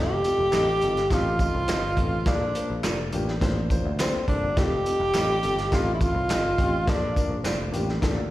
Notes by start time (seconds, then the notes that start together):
Already playing: F1 C4 D#4 F4 G4 A4
0.23 C4 D#4 F4 A4, closed hi-hat, tambourine
0.39 F1
0.52 A1 C4 D#4 F4 A4 D#5, snare, clap, closed hi-hat, tambourine
0.81 G1 C4 D#4 F4 A4, closed hi-hat, tambourine
0.97 snare, closed hi-hat
1.10 A1 C4 D#4 F4 A4, kick, snare, closed hi-hat, tambourine
1.38 C4 D#4 F4 A4, kick, closed hi-hat, tambourine
1.55 C2
1.67 G1 C4 D#4 F4 A4 C5 D#5, snare, clap, closed hi-hat, tambourine
1.96 A1 C4 D#4 F4 A4, kick, closed hi-hat
2.25 A#1 A#3 D4 F4 A4, kick, snare, closed hi-hat, tambourine
2.54 A#3 D4 F4 C5, closed hi-hat, tambourine
2.70 A#1
2.83 F1 A#3 D4 F4 A4 D5, snare, clap, closed hi-hat, tambourine
3.12 A1 A#3 D4 F4 G4, closed hi-hat, tambourine
3.28 snare
3.40 A1 A#3 D4 F4 C5, kick, snare, closed hi-hat, tambourine
3.70 A#3 D4 F4 C5, kick, closed hi-hat, tambourine
3.85 D2
3.99 A#3 C4 D4 F4 A4 D5, snare, clap, closed hi-hat, tambourine
4.28 C2 A#3 D4 F4 A4, kick, closed hi-hat
4.43 G1
4.56 F1 C4 D#4 F4 G4 A4, kick, snare, closed hi-hat, tambourine
4.85 C4 D#4 F4 A4, closed hi-hat, tambourine
5.00 F1
5.13 A1 C4 D#4 F4 A4 D#5, snare, clap, closed hi-hat, tambourine
5.42 G1 C4 D#4 F4 A4, closed hi-hat, tambourine
5.58 snare, closed hi-hat
5.70 A1 C4 D#4 F4 A4, kick, snare, closed hi-hat, tambourine
5.75 F4
5.95 E4
5.99 C4 D#4 F4 A4, kick, closed hi-hat, tambourine
6.15 C2
6.28 G1 C4 D#4 F4 A4 D#5, snare, clap, closed hi-hat, tambourine
6.57 A1 C4 D#4 F4 G4, kick, closed hi-hat, tambourine
6.85 A#1 A#3 D4 F4 A4, kick, snare, closed hi-hat, tambourine
6.90 D4
7.15 A#3 D4 F4 A#4, kick, closed hi-hat, tambourine
7.29 A#1
7.43 F1 A#3 D4 F4 A4 C5 D5, snare, clap, closed hi-hat, tambourine
7.72 A1 A#3 D4 F4 G4, closed hi-hat, tambourine
7.89 snare
8.01 A1 A#3 D4 F4 A4, kick, snare, closed hi-hat, tambourine
8.17 D2